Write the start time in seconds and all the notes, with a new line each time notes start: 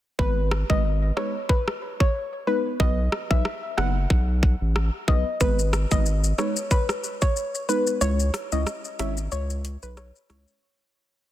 0.19 G#1 G#3 B3 D#4 B4, kick
0.51 cross-stick
0.69 G#1 G#3 B3 D#4 B4 D#5, kick
1.16 G#3 B3 D#4 B4 C#5, cross-stick
1.49 B4, kick
1.68 cross-stick
2.00 C#5, kick
2.47 G#3 B3 D#4 B4
2.79 B1 F#3 B3 D#4 B4 D#5, kick
3.12 cross-stick
3.30 B1 F#3 B3 D#4 B4 E5, kick
3.45 cross-stick
3.77 F#1 F#3 B3 D#4 B4 F#5, cross-stick
4.10 B1, kick
4.43 kick
4.61 A1
4.76 cross-stick
5.08 B1 F#3 B3 D#4 B4 D#5, kick
5.40 G#1 G#3 B3 D#4 B4, kick, shaker
5.59 shaker
5.73 cross-stick, shaker
5.91 G#1 G#3 B3 D#4 B4 D#5, kick, shaker
6.06 shaker
6.24 shaker
6.38 G#3 B3 D#4 B4 C#5, cross-stick, shaker
6.56 shaker
6.71 B4, kick, shaker
6.89 cross-stick, shaker
7.04 shaker
7.22 C#5, kick, shaker
7.36 shaker
7.55 shaker
7.69 G#3 B3 D#4 B4, shaker
7.87 shaker
8.01 C#2 G#3 C#4 E4 C#5, shaker
8.20 shaker
8.34 cross-stick, closed hi-hat, shaker
8.52 C#2 G#3 C#4 E4 C#5 D#5, shaker
8.67 cross-stick, shaker
8.85 shaker
8.99 G#1 G#3 C#4 E4 C#5 E5, cross-stick, closed hi-hat, shaker
9.17 shaker
9.32 C#2 C#5, shaker
9.50 shaker
9.65 closed hi-hat, shaker
9.83 B1 B4, shaker
9.97 C#5, cross-stick, shaker
10.16 shaker
10.29 C#2 G#3 C#4 E4 C#5, cross-stick, closed hi-hat, shaker
10.48 shaker